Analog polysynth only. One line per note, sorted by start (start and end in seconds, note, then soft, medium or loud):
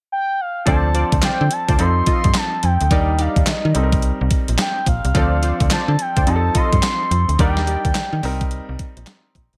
0.66 0.88 F4 medium
0.66 0.88 C5 medium
0.66 0.88 D5 loud
0.94 1.16 F4 medium
0.94 1.16 C5 medium
0.94 1.17 D5 medium
1.22 1.44 F4 medium
1.22 1.44 C5 medium
1.22 1.44 D5 medium
1.68 1.86 F4 medium
1.68 1.86 C5 medium
1.68 1.86 D5 medium
2.06 2.28 F4 medium
2.06 2.28 A4 medium
2.06 2.29 D#5 medium
2.91 3.12 D#4 medium
2.91 3.13 G4 medium
2.91 3.13 D5 loud
3.18 3.40 D#4 medium
3.18 3.41 G4 medium
3.18 3.41 D5 medium
5.15 5.37 F4 medium
5.15 5.37 C5 medium
5.15 5.37 D5 loud
5.42 5.65 F4 medium
5.42 5.65 C5 medium
5.42 5.65 D5 medium
5.70 5.92 F4 medium
5.70 5.93 C5 medium
5.70 5.93 D5 medium
6.16 6.34 F4 medium
6.16 6.34 C5 medium
6.16 6.34 D5 medium
6.54 6.77 F4 medium
6.54 6.77 A4 medium
6.54 6.77 D#5 medium
7.39 7.61 D#4 medium
7.39 7.61 G4 medium
7.39 7.61 D5 loud
7.67 7.89 D#4 medium
7.67 7.89 G4 medium
7.67 7.89 D5 medium